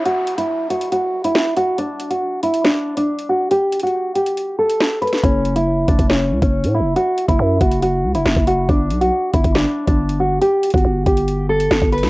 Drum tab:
HH |x-----------x-----x-----------------x-----x-----x-----------------x-----------------x-----------|x-----------x-----x-----------------x-----x-----------------------x-----------x-----------------|x-----------x---x---x---------------x-----x-----x-----------------x-----------------x--x--x--x--|x-----------x-----x-----------------x-----x-----------------------x-----------x-----------------|
SD |------------------------------------------------------------------------o-----------------------|------------------------------------------------o-----------------------------------------------|------------------------------------------------------------------------o-----------------o-----|------------------------------------------------o-----------------------------------------------|
BD |------------------------------------------------------------------------------------------------|------------------------------------------------------------------------------------------------|------------------------------------------------------------------------------------------------|o-----------------------------------o-----o-----------------------o-----------------------------|

HH |x-----------x-----x-----------------x-----x-----x-----------------x-----------------x-----------|x-----------x-----x-----------------x-----x-----------------------x-----------x-----------------|x-----------x---x---x---------------x-----x-----x-----------------x-----------------x--x--x-----|
SD |------------------------------------------------------------------------o-----------------------|------------------------------------------------o-----------------------------------------------|------------------------------------------------------------------------o-----------------o-----|
BD |------------------o-----------------o-----------------------------------------o-----------------|o-----------------------------------o-----o-----------------------o-----------------------------|------------------o-----------------o-----------------------------------------o-----------------|